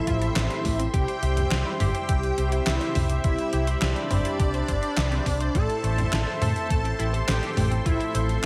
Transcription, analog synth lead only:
Already playing: E4
0.93 G4
1.80 G4
2.66 E4
3.24 E4
3.82 D4
5.55 A4
6.42 A4
7.28 G4
7.86 E4

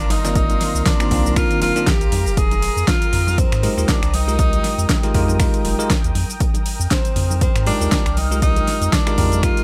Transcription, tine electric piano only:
0.24 D#3 A#3 C4 F4 D5
1.00 D#3 A#3 C4 D4 F4
1.11 D#3 A#3 C4 D4 F4
1.36 D#3 A#3 C4 D4 F4
1.76 D#3 A#3 C4 D4 F4
3.63 G#3 D#4 F4 G4 A#4
3.77 G#3 D#4 F4 G4 A#4
4.27 G#3 D#4 F4 G4 A#4
5.03 G#3 D#4 F4 G4 A#4
5.14 G#3 D#4 F4 G4 A#4
5.40 G#3 D#4 F4 G4 A#4
5.79 G#3 D#4 F4 G4 A#4
7.66 G#3 D#4 F4 G4 A#4
7.81 G#3 D#4 F4 G4 A#4
8.31 G#3 D#4 F4 G4 A#4
9.07 G#3 D#4 F4 G4 A#4
9.18 G#3 D#4 F4 G4 A#4
9.43 G#3 D#4 F4 G4 A#4

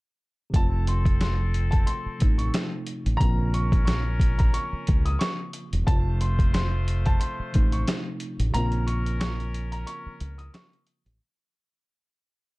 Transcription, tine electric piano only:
0.50 C3 F3 A3
0.56 C4 F4
2.18 C3 F3 A3 C4 D#4
3.17 C#3 F3 A#3
3.23 C4 F4
5.83 C3 F3 A3
5.89 C4 F4
7.52 C3 F3 A3 C4 D#4
8.51 C#3 F3 A#3
8.56 C4 F4

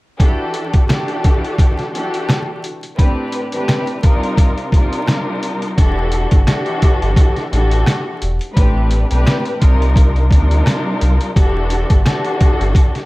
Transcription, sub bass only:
5.78 E1
6.32 G1
7.02 G1
7.53 A1
8.22 E1
8.57 A1
9.11 B1
9.62 C2
10.31 D2
11.02 C2
11.37 E1
11.90 G1
12.61 G1

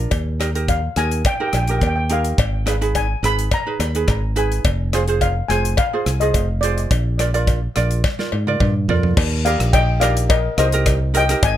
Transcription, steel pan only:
0.69 F5
0.97 G#5
1.27 G5
1.34 G5
1.41 G5
1.48 G5
1.57 G5
1.63 G5
1.73 G5
1.79 G5
1.87 G5
1.96 G5
2.13 F5
2.96 G#5
3.25 B5
3.54 A#5
4.39 G#5
5.21 F5
5.48 G#5
5.79 F5
6.20 D#5
6.61 D5
9.45 D5 F5
9.73 D#5 G5
10.00 D5 F5
10.29 A#4 D#5
10.58 C5 D#5
11.17 D#5 G5
11.44 D#5 G#5

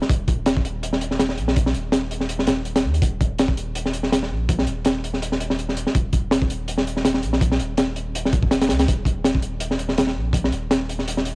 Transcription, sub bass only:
0.09 D#1
1.38 A#1
1.74 D#1
2.48 D#1
2.84 D#2
3.02 D#1
4.30 A#1
4.67 D#1
5.95 D#1
7.23 A#1
7.60 D#1
8.69 C#2
8.88 D#1
10.16 A#1
10.52 D#1

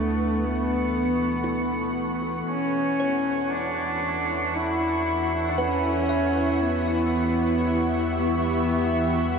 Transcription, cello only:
Already playing: A3
0.44 B3
2.49 C#4
3.51 D4
4.55 E4
5.49 D4
5.58 C#4
6.61 B3
8.19 B3

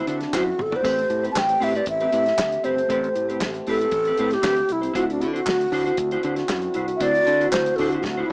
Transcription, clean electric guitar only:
0.07 E4 F#4 C5
0.21 muted clean electric guitar stroke
0.33 E4 F#4 C5
0.46 muted clean electric guitar stroke
0.59 muted clean electric guitar stroke
0.71 E4 F#4 D5
0.84 C4 G4 B4
0.98 muted clean electric guitar stroke
1.09 muted clean electric guitar stroke
1.23 C4 G4 B4
1.48 muted clean electric guitar stroke
1.60 C4 G4 B4
1.75 C4 G4 B4
2.01 C4 G4 B4
2.12 C4 G4 B4
2.38 muted clean electric guitar stroke
2.52 muted clean electric guitar stroke
2.64 C4 G4 B4
2.77 muted clean electric guitar stroke
2.89 C4 G4 B4
3.01 muted clean electric guitar stroke
3.15 muted clean electric guitar stroke
3.29 C4 G4 B4
3.55 muted clean electric guitar stroke
3.67 C4 G4 B4
3.81 C4 G4 B4
3.95 muted clean electric guitar stroke
4.07 C4 G4 B4
4.19 C4 G4 B4
4.32 muted clean electric guitar stroke
4.42 C4 G4 B4
4.68 muted clean electric guitar stroke
4.81 C4 G4 C5
4.93 E4 F#4 C5
5.07 muted clean electric guitar stroke
5.19 muted clean electric guitar stroke
5.33 E4 F#4 C5
5.44 muted clean electric guitar stroke
5.60 muted clean electric guitar stroke
5.72 E4 F#4 C5
5.85 E4 F#4 C5
5.99 muted clean electric guitar stroke
6.12 E4 F#4 C5
6.24 E4 F#4 C5
6.37 muted clean electric guitar stroke
6.50 muted clean electric guitar stroke
6.63 muted clean electric guitar stroke
6.75 E4 F#4 C5
6.88 muted clean electric guitar stroke
7.00 E4 F#4 C5
7.15 muted clean electric guitar stroke
7.27 muted clean electric guitar stroke
7.40 E4 F#4 C5
7.68 muted clean electric guitar stroke
7.80 E4 F#4 C5
7.93 E4 F#4 C5
8.05 muted clean electric guitar stroke
8.17 E4 F#4 C5

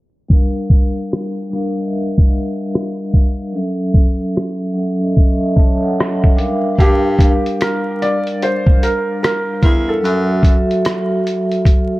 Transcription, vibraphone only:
0.29 G3 D4 A#4
0.33 F5
1.50 G3 D4 A#4
1.54 F5
1.75 G3 D4 A#4
1.86 E5
3.52 F#3 C#4 A4
3.57 E5
4.74 F#3 C#4 A4
4.78 E5
4.99 F#3 C#4 A4
5.04 D#5
5.10 E5
5.57 C#5 A5
5.83 A4 F#5
6.22 E5
6.35 G3 D4 A#4
6.40 F5
6.76 G3 D4 A#4
7.16 G3 D4 A#4
7.21 F5
10.01 F#3 F#4 A4
10.05 E5
10.41 F#3 F#4 A4
10.46 E5

